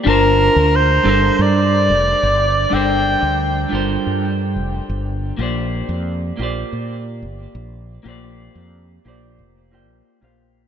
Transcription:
<<
  \new Staff \with { instrumentName = "Soprano saxophone" } { \time 4/4 \key g \minor \tempo 4 = 90 bes'4 c''4 d''2 | g''4. r2 r8 | r1 | r1 | }
  \new Staff \with { instrumentName = "Clean electric guitar" } { \time 4/4 \key g \minor <g d' f' bes' c'' a''>4. <g d' f' a' bes' c''>2~ <g d' f' a' bes' c''>8 | <g d' f' a' bes' c''>4. <g d' f' a' bes' c''>2~ <g d' f' a' bes' c''>8 | <bes f' g' c'' d''>4. <bes f' g' c'' d''>2~ <bes f' g' c'' d''>8 | <bes f' g' c'' d''>4. <bes f' g' c'' d''>4 <bes f' g' c'' g''>8. <bes f' g' c'' f''>8. | }
  \new Staff \with { instrumentName = "Fretless electric bass" } { \clef bass \time 4/4 \key g \minor g,,8. d,8. g,,16 r16 g,8. f,,16 r16 g,,8. | g,,8. d,8. g,,16 r16 g,8. f,,16 r16 g,,8. | bes,,8. f,8. bes,,16 r16 bes,8. g,,16 r16 bes,,8. | bes,,8. f,8. bes,,8 f,,8. bes,,16 r16 bes,,8. | }
>>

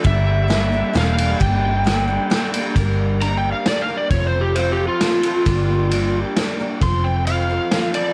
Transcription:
<<
  \new Staff \with { instrumentName = "Electric slide guitar" } { \time 3/4 \key g \minor \tempo 4 = 133 e''2 f''4 | g''2~ g''8 r8 | r4 \tuplet 3/2 { bes''8 g''8 f''8 d''8 f''8 d''8 } | \tuplet 3/2 { cis''8 c''8 g'8 c''8 g'8 f'8~ } f'4~ |
f'4. r4. | c'''8 g''8 f''4. d''8 | }
  \new Staff \with { instrumentName = "Tonewheel organ" } { \time 3/4 \key g \minor <bes g' d'' a''>2.~ | <bes g' d'' a''>2. | <g' bes' d'' bes''>2. | <a' c'' f'' c'''>2. |
<bes' d'' g'' d'''>2. | <a' c'' f'' c'''>2. | }
  \new Staff \with { instrumentName = "Twelve-string acoustic guitar" } { \time 3/4 \key g \minor <g, d g bes d' a'>4 <g bes d' a'>8 <g bes d' a'>8 <g bes d' a'>8 <g bes d' a'>8 | <g, d g bes d' a'>4 <g bes d' a'>8 <g bes d' a'>8 <g bes d' a'>8 <g bes d' a'>8 | <g, d g bes d' bes'>4 <g bes d' bes'>4 <g bes d' bes'>8 <g bes d' bes'>8 | <f c' f' a'>4 <f c' f' a'>4 <f c' f' a'>4 |
<g, d g bes d' g'>4 <g bes d' g'>4 <g bes d' g'>8 <g bes d' g'>8 | <f c' f' a'>4 <f c' f' a'>8 <c' f' a'>8 <f c' f' a'>4 | }
  \new Staff \with { instrumentName = "Clean electric guitar" } { \time 3/4 \key g \minor g,8 g8 bes8 d'8 g8 bes8 | g,8 g8 bes8 d'8 g8 bes8 | g,8 bes8 d'8 g8 d'8 bes'8 | f8 c'8 f'8 f8 f'8 a'8 |
g,8 bes8 d'8 g8 d'8 bes'8 | f8 c'8 f'8 f8 f'8 a'8 | }
  \new Staff \with { instrumentName = "Picked electric bass" } { \clef bass \time 3/4 \key g \minor g,,2 e,,4 | g,,2 r4 | g,,2 r4 | f,,2 r4 |
g,,2 r4 | f,,2 r4 | }
  \new DrumStaff \with { instrumentName = "Drums" } \drummode { \time 3/4 <bd cymr>4 <cymr sn>4 <cymr sn>8 cymr8 | <bd cymr>4 <cymr sn>4 <cymr sn>8 cymr8 | <bd cymr>4 cymr4 <cymr sn>4 | <bd cymr>4 cymr4 <cymr sn>8 cymr8 |
<bd cymr>4 cymr4 <cymr sn>4 | <bd cymr>4 cymr4 <cymr sn>8 cymr8 | }
>>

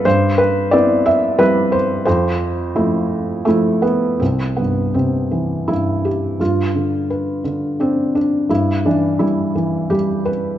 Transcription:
<<
  \new Staff \with { instrumentName = "Felt piano" } { \time 3/4 \key c \major \tempo 4 = 86 c''8 b'8 d''8 e''8 b'8 c''8 | c''2 a8 b8 | c'8 b8 c'4 e'8 g'8 | f'4. r8 c'8 d'8 |
e'8 d'8 e'4 g'8 b'8 | }
  \new Staff \with { instrumentName = "Felt piano" } { \clef bass \time 3/4 \key c \major g,4 <b c' e'>4 <g c' e'>4 | f,4 <f a e'>4 <f e'>4 | c,8 g,8 c8 e8 g,4 | g,8 d8 b'8 d8 d'4 |
g,8 e8 g8 e8 g4 | }
>>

